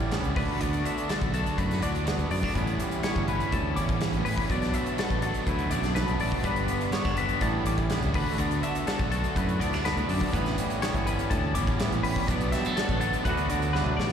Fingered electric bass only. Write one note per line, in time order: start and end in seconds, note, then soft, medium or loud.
0.00 0.19 A1 medium
0.23 0.34 C#2 medium
0.36 0.47 D2 medium
0.60 0.81 D2 medium
1.22 1.43 B1 medium
1.58 1.82 F#2 medium
1.82 2.14 D2 medium
2.18 2.29 D2 medium
2.31 2.41 F#2 medium
2.56 2.77 A1 loud
3.16 3.37 G1 medium
3.52 3.78 D2 medium
3.77 4.09 A1 medium
4.13 4.24 A1 medium
4.26 4.36 A1 medium
4.50 4.71 B1 loud
5.10 5.32 A1 medium
5.47 5.73 D2 medium
5.72 6.04 B1 medium
6.08 6.19 B1 medium
6.20 6.30 A1 medium
6.44 6.66 G1 loud
7.05 7.27 F#1 medium
7.41 7.63 A1 medium
7.65 7.97 A1 medium
8.01 8.13 C#2 medium
8.14 8.25 D2 medium
8.38 8.60 D2 loud
9.00 9.21 B1 medium
9.36 9.61 F#2 medium
9.61 9.93 D2 medium
9.97 10.08 D2 medium
10.09 10.20 F#2 medium
10.34 10.55 A1 loud
10.95 11.16 G1 medium
11.31 11.57 D2 medium
11.55 11.87 A1 medium
11.92 12.03 A1 medium
12.04 12.15 A1 medium
12.28 12.50 B1 loud
12.89 13.10 A1 medium
13.26 13.47 D2 medium
13.51 13.82 D2 loud
13.86 13.97 D2 medium
13.99 14.09 A1 medium